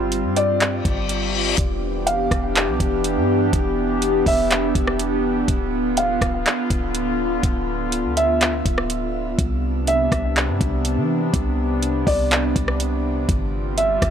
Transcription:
Already playing: 808-style bass G1, ambient pad G3 C4 F4
0.12 closed hi-hat
0.24 808-style bass G2
0.36 felt piano D5, closed hi-hat
0.60 clap, closed hi-hat, reverse cymbal
0.85 808-style bass G1, kick, closed hi-hat
1.09 closed hi-hat
1.58 808-style bass E1, ambient pad E3 B3 D4 G4, kick, closed hi-hat
2.07 felt piano F5, closed hi-hat
2.31 808-style bass E1, kick, cross-stick, closed hi-hat
2.56 clap, closed hi-hat
2.68 808-style bass B1
2.80 808-style bass E1, kick, closed hi-hat
3.04 closed hi-hat
3.17 808-style bass G2
3.53 808-style bass E1, kick, closed hi-hat
4.02 closed hi-hat
4.26 808-style bass E1, felt piano E5, kick, open hi-hat
4.51 clap, closed hi-hat
4.75 808-style bass E1, kick, closed hi-hat
4.87 cross-stick
4.99 closed hi-hat
5.48 808-style bass D1, ambient pad D3 F4, kick, closed hi-hat
5.97 felt piano F5, closed hi-hat
6.22 808-style bass D1, kick, cross-stick, closed hi-hat
6.46 clap, closed hi-hat
6.70 808-style bass D1, kick, closed hi-hat
6.95 closed hi-hat
7.43 808-style bass D1, kick, closed hi-hat
7.92 closed hi-hat
8.04 808-style bass D2
8.17 felt piano E5, closed hi-hat
8.41 clap, closed hi-hat
8.66 808-style bass D1, kick, closed hi-hat
8.78 cross-stick
8.90 closed hi-hat
9.38 808-style bass C2, ambient pad C3 B3 D4, kick, closed hi-hat
9.87 felt piano E5, closed hi-hat
10.12 808-style bass C2, kick, cross-stick, closed hi-hat
10.36 clap, closed hi-hat
10.48 808-style bass G2
10.61 808-style bass C2, kick, closed hi-hat
10.85 closed hi-hat
10.97 808-style bass E3
11.34 808-style bass C2, kick, closed hi-hat
11.83 closed hi-hat
12.07 808-style bass C2, felt piano D5, kick, open hi-hat
12.31 clap, closed hi-hat
12.56 808-style bass C2, kick, closed hi-hat
12.68 cross-stick
12.80 closed hi-hat
13.29 808-style bass G1, ambient pad G3 C4 F4, kick, closed hi-hat
13.78 felt piano E5, closed hi-hat
14.02 808-style bass G1, kick, cross-stick, closed hi-hat

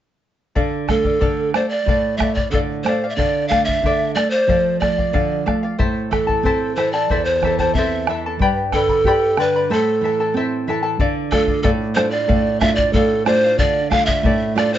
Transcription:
0.55 nylon-string guitar D3, charango A4 D5 F5, bombo low
0.88 nylon-string guitar A3, charango A4 D5 F5, pan flute A4, bombo rim, bombo low
1.04 charango D5 F5, bombo low
1.21 nylon-string guitar D3, charango A4 D5 F5, bombo low
1.54 nylon-string guitar A3, charango A4 D5 F5, pan flute C5, bombo rim
1.69 pan flute D5, charango D5 F5
1.86 nylon-string guitar A2, charango A4 D5 F5, bombo low
2.18 nylon-string guitar A3, charango A4 D5, pan flute E5, bombo rim, bombo low
2.22 charango F5
2.35 pan flute D5, charango F5, bombo low
2.39 charango D5
2.51 nylon-string guitar D3, pan flute A4, charango A4 D5 F5, bombo low
2.84 nylon-string guitar A3, charango A4, pan flute C5, bombo rim
2.88 charango D5 F5
3.04 charango D5 F5
3.10 pan flute E5
3.16 nylon-string guitar D3, charango A4 D5 F5, pan flute D5, bombo low
3.48 nylon-string guitar A3, charango A4 D5 F5, pan flute F5, bombo rim, bombo low
3.65 charango D5 F5, pan flute E5, bombo low
3.83 nylon-string guitar D3, charango A4 D5, bombo low
4.15 nylon-string guitar A3, charango A4 D5, pan flute D5, bombo rim
4.19 charango F5
4.30 pan flute C5, charango F5
4.35 charango D5
4.47 nylon-string guitar F3, charango A4 D5 F5, bombo low
4.80 nylon-string guitar A3, charango A4 D5 F5, pan flute D5, bombo rim, bombo low
4.98 charango D5 F5, bombo low
5.13 nylon-string guitar D3, charango A4 D5 F5, bombo low
5.46 nylon-string guitar A3, charango A4 D5 F5, bombo rim, bombo low
5.63 charango D5 F5
5.79 nylon-string guitar A2, charango E4 A4 C5 E5 A5, bombo low
6.11 nylon-string guitar E3, charango E4 A4 E5 A5, pan flute A4, bombo rim, bombo low
6.27 charango E4 A4 A5, bombo low
6.43 nylon-string guitar C4, charango E4 A4 C5 E5 A5, bombo low
6.76 nylon-string guitar E3, charango E4 A4 E5 A5, pan flute C5, bombo rim
6.92 charango E4 A4 A5, pan flute D5
7.10 nylon-string guitar E2, charango E4 A4 C5 E5 A5, bombo low
7.25 pan flute C5
7.42 nylon-string guitar E3, charango E4 E5 A5, bombo rim, bombo low
7.46 charango A4
7.59 charango E4 A4 A5, pan flute C5, bombo low
7.74 nylon-string guitar C4, charango E4 A4 C5 E5 A5, pan flute E5, bombo low
8.07 nylon-string guitar E3, charango E4 A4 E5 A5, bombo rim
8.26 charango E4 A4 A5
8.39 nylon-string guitar G2, charango G4 B4 D5 G5 B5, bombo low
8.72 nylon-string guitar D3, pan flute A4, charango B4 D5 G5 B5, bombo rim, bombo low
8.88 charango B4 D5 B5, bombo low
9.04 nylon-string guitar G4, charango G4 B4 D5 G5 B5, bombo low
9.37 nylon-string guitar D3, charango B4 D5 G5 B5, pan flute B4, bombo rim
9.56 charango B4 D5 B5
9.70 nylon-string guitar A2, charango E4 A4 C5 E5 A5, pan flute A4
10.01 nylon-string guitar E3, charango E4 A4 E5
10.05 charango A5
10.20 charango E4 A4 A5
10.34 nylon-string guitar C4, charango E4 A4 C5 E5 A5
10.67 nylon-string guitar E3, charango E4 A4 E5 A5
10.83 charango E4 A4 A5
10.99 nylon-string guitar D3, charango A4 D5 F5, bombo low
11.31 nylon-string guitar A3 D4 F4, pan flute A4, charango A4 D5 F5, bombo rim, bombo low
11.48 charango D5 F5, bombo low
11.63 nylon-string guitar A2, pan flute A4, charango A4 D5 F5, bombo low
11.95 nylon-string guitar A3 D4 F4, charango A4 D5 F5, pan flute C5, bombo rim
12.11 pan flute D5, charango D5 F5
12.28 nylon-string guitar A2, charango A4 D5 F5, bombo low
12.60 nylon-string guitar A3 D4 F4, charango A4 D5 F5, pan flute E5, bombo rim, bombo low
12.76 pan flute D5, charango F5, bombo low
12.80 charango D5
12.93 nylon-string guitar A2, pan flute A4, charango A4 D5 F5, bombo low
13.26 nylon-string guitar A3 D4 F4, charango A4 D5 F5, pan flute C5, bombo rim
13.44 charango D5 F5
13.58 nylon-string guitar D3, charango A4 D5 F5, pan flute D5, bombo low
13.90 nylon-string guitar A3 D4 F4, charango A4 D5 F5, pan flute F5, bombo rim, bombo low
14.06 pan flute E5, charango F5, bombo low
14.11 charango D5
14.23 nylon-string guitar A2, charango A4 D5, bombo low
14.55 nylon-string guitar A3 D4 F4, charango A4 D5 F5, pan flute D5, bombo rim
14.74 pan flute C5, charango D5 F5

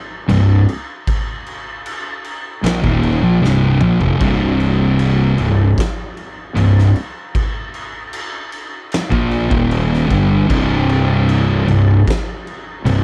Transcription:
0.28 fingered electric bass C1, distorted electric guitar C2 G2, crash
0.69 crash
1.07 kick, crash
1.46 crash
1.86 crash
2.24 crash
2.63 fingered electric bass A#1, distorted electric guitar A#2 F3, snare, crash
2.83 fingered electric bass D#1, distorted electric guitar D#2 A#2 D#3, kick
3.03 crash
3.22 fingered electric bass A#1, distorted electric guitar A#2 F3
3.41 fingered electric bass C1, distorted electric guitar C2 G2 C3, snare
3.81 fingered electric bass A#1, distorted electric guitar A#2 F3, mid tom
4.00 fingered electric bass F1, distorted electric guitar F2 C3, floor tom
4.20 fingered electric bass C1, distorted electric guitar C2 G2 C3, kick, crash
4.60 crash
4.99 crash
5.38 fingered electric bass C1, distorted electric guitar C2 G2, crash
5.78 kick, snare, crash
6.17 crash
6.55 fingered electric bass C1, distorted electric guitar C2 G2, crash
6.79 snare
6.96 crash
7.35 kick, crash
7.74 crash
8.13 crash
8.52 crash
8.92 snare, crash
9.12 fingered electric bass A#1, distorted electric guitar A#2 F3 A#3, kick
9.31 crash
9.50 fingered electric bass D#1, distorted electric guitar D#2 A#2 D#3, kick
9.71 crash
9.94 snare
10.08 fingered electric bass G1, distorted electric guitar G2 D3 G3, kick, crash
10.48 fingered electric bass C1, distorted electric guitar C2 G2 C3, kick, crash
10.89 crash
11.29 crash
11.67 fingered electric bass C1, distorted electric guitar C2 G2, crash
12.08 kick, snare, crash
12.47 crash
12.84 fingered electric bass C1, distorted electric guitar C2 G2, crash

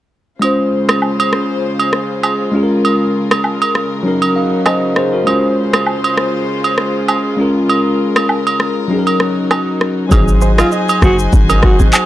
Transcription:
0.39 string section C#3 G#3 F4 C5, tine electric piano G#3 C#4 F4, high agogo
0.45 tine electric piano C5
0.89 cross-stick, high agogo
1.02 low woodblock
1.20 high agogo
1.33 cross-stick
1.79 high agogo
1.93 cross-stick
2.23 high agogo, low woodblock
2.51 string section C#3 A#4, tine electric piano G#3 C#4 F4
2.56 tine electric piano G#4
2.63 tine electric piano A#4
2.85 high agogo
3.31 cross-stick, high agogo
3.44 low woodblock
3.62 high agogo
3.75 cross-stick
4.03 tine electric piano F#3 C#4 D#4, string section F#3 D#4
4.08 tine electric piano A#4
4.22 high agogo
4.36 tine electric piano F5
4.66 tine electric piano C5 D#5, cross-stick, high agogo, low woodblock
4.96 tine electric piano G#4 C5, cross-stick
5.13 tine electric piano F#4 A#4
5.24 tine electric piano G#3 C#4 F4, string section G#3 F4 C5, high agogo
5.29 tine electric piano C5
5.73 cross-stick, high agogo
5.86 low woodblock
6.04 high agogo
6.18 cross-stick
6.64 high agogo
6.78 cross-stick
7.08 high agogo, low woodblock
7.36 tine electric piano G#3 C#4 F4, string section A#4
7.41 tine electric piano A#4
7.69 high agogo
8.16 cross-stick, high agogo
8.29 low woodblock
8.47 high agogo
8.60 cross-stick
8.88 tine electric piano F#3 C#4 D#4, string section F#3 D#4
8.93 tine electric piano G#4
8.99 tine electric piano A#4
9.07 high agogo
9.20 cross-stick
9.51 cross-stick, high agogo, low woodblock
9.81 cross-stick
10.09 808-style bass G#1, tine electric piano F#3 C4 D#4, clean electric guitar C4 G#4, string section F#4 C5 D#5 G#5, kick, high agogo, shaker
10.14 tine electric piano G#4
10.28 shaker
10.41 clean electric guitar D#4 C5, shaker
10.58 alto saxophone F4, clean electric guitar F#4 D#5, cross-stick, high agogo, shaker
10.72 clean electric guitar F#4 D#5, shaker
10.89 high agogo, shaker
11.02 808-style bass F#1, clean electric guitar D#4 C5, alto saxophone F#4, kick, cross-stick, shaker
11.19 shaker
11.33 808-style bass G#1, kick, shaker
11.49 clean electric guitar C#4 A#4, high agogo, shaker
11.63 alto saxophone F#4, kick, cross-stick
11.79 808-style bass G#1, clean electric guitar C4 G#4, shaker
11.93 clap, high agogo, low woodblock, shaker

